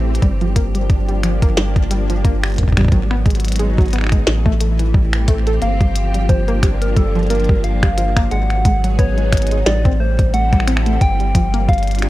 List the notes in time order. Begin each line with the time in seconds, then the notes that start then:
Already playing: A1 E3 A3 C4 G4
0.15 closed hi-hat
0.22 G1 F3 G3, kick, closed hi-hat
0.41 F3, closed hi-hat
0.46 D4
0.56 A#3, kick, closed hi-hat
0.74 G3 A#3, closed hi-hat
0.90 kick, closed hi-hat
1.09 G3, closed hi-hat
1.23 F3, finger snap, closed hi-hat
1.42 A#3, kick, closed hi-hat
1.57 G3, snare, closed hi-hat
1.76 kick, closed hi-hat
1.91 G3, closed hi-hat
2.10 F3, closed hi-hat
2.25 A#3, kick, closed hi-hat
2.43 G3, finger snap, closed hi-hat
2.46 closed hi-hat
2.48 closed hi-hat
2.50 closed hi-hat
2.52 closed hi-hat
2.54 closed hi-hat
2.56 closed hi-hat
2.58 kick, closed hi-hat
2.63 kick
2.68 kick
2.72 kick
2.77 G3, finger snap, kick, closed hi-hat
2.81 kick
2.85 kick
2.88 G#1 F#3, kick, closed hi-hat
2.92 F#3, kick
3.11 B3, finger snap
3.15 B3
3.26 G#3 D#4, kick, closed hi-hat
3.30 closed hi-hat
3.35 closed hi-hat
3.40 closed hi-hat
3.45 closed hi-hat
3.48 closed hi-hat
3.52 G#4, closed hi-hat
3.56 G#3, closed hi-hat
3.59 closed hi-hat
3.78 F#3, kick, closed hi-hat
3.81 closed hi-hat
3.86 closed hi-hat
3.88 closed hi-hat
3.91 finger snap, closed hi-hat
3.93 B3, finger snap, closed hi-hat
3.98 finger snap
4.01 finger snap
4.04 finger snap
4.07 finger snap
4.09 G#3, finger snap, kick, closed hi-hat
4.27 A1 E3, snare, closed hi-hat
4.46 A3, kick
4.61 A3, closed hi-hat
4.79 E3, closed hi-hat
4.88 A3 C4 G4
4.94 G3, kick
5.13 finger snap, closed hi-hat
5.28 A3, kick, closed hi-hat
5.47 A4, closed hi-hat
5.62 G1 F3 A#3 F5, closed hi-hat
5.81 G3, kick, closed hi-hat
5.96 closed hi-hat
6.11 G3 A#3, closed hi-hat
6.17 D4
6.29 F3 C5, kick, closed hi-hat
6.48 A#3, closed hi-hat
6.63 G3, finger snap, kick, closed hi-hat
6.82 A#4, closed hi-hat
6.96 G3 A4, kick, closed hi-hat
7.15 F3, closed hi-hat
7.19 closed hi-hat
7.23 closed hi-hat
7.27 A#4, closed hi-hat
7.30 A#3, closed hi-hat
7.35 closed hi-hat
7.40 closed hi-hat
7.44 closed hi-hat
7.49 G3, kick
7.64 F5, closed hi-hat
7.83 G3, finger snap, kick, closed hi-hat
7.98 F3, closed hi-hat
8.17 A#3, finger snap, kick, closed hi-hat
8.31 G#1 F#3 G#3 F#5, closed hi-hat
8.50 finger snap, closed hi-hat
8.65 G#3 B3 G#4, kick, closed hi-hat
8.84 F#3, closed hi-hat
8.93 D#4
8.99 B3 C#5, kick, closed hi-hat
9.18 G#3, closed hi-hat
9.33 finger snap, kick, closed hi-hat
9.37 closed hi-hat
9.42 closed hi-hat
9.47 closed hi-hat
9.51 G#3, closed hi-hat
9.66 A1 G3 D5, snare, closed hi-hat
9.85 C4, kick, closed hi-hat
10.00 A3 C5
10.07 C4
10.19 kick, closed hi-hat
10.28 E4 A4
10.34 A3 F#5, closed hi-hat
10.53 G3, finger snap, kick, closed hi-hat
10.60 finger snap
10.67 C4, finger snap, closed hi-hat
10.77 finger snap
10.86 A3, closed hi-hat
11.01 G1 G5, kick, closed hi-hat
11.20 G3, closed hi-hat
11.35 F3 F4, kick, closed hi-hat
11.54 A#3 D4, closed hi-hat
11.69 G3 F5, kick, closed hi-hat
11.73 closed hi-hat
11.78 A#4, closed hi-hat
11.83 closed hi-hat
11.87 closed hi-hat
11.91 closed hi-hat
11.95 closed hi-hat
11.99 G3, finger snap, closed hi-hat
12.02 closed hi-hat